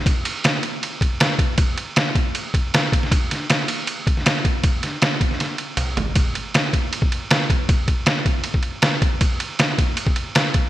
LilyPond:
\new DrumStaff \with { instrumentName = "Drums" } \drummode { \time 4/4 \tempo 4 = 157 <bd cymr>8 cymr8 <cymr sn>8 cymr8 cymr8 <bd cymr>8 <cymr sn>8 <bd cymr>8 | <bd cymr>8 cymr8 <cymr sn>8 <bd cymr>8 cymr8 <bd cymr>8 <cymr sn>8 <bd cymr>16 sn16 | <bd cymr>8 <cymr sn>8 <cymr sn>8 cymr8 cymr8 <bd cymr>16 sn16 <cymr sn>8 <bd cymr>8 | <bd cymr>8 <cymr sn>8 <cymr sn>8 <bd cymr>16 sn16 <cymr sn>8 cymr8 <cymr toml>8 <cymr tomfh>8 |
<bd cymr>8 cymr8 <cymr sn>8 <bd cymr>8 cymr16 bd16 cymr8 <cymr sn>8 <bd cymr>8 | <bd cymr>8 <bd cymr>8 <cymr sn>8 <bd cymr>8 cymr16 bd16 cymr8 <cymr sn>8 <bd cymr>8 | <bd cymr>8 cymr8 <cymr sn>8 <bd cymr>8 cymr16 bd16 cymr8 <cymr sn>8 <bd cymr>8 | }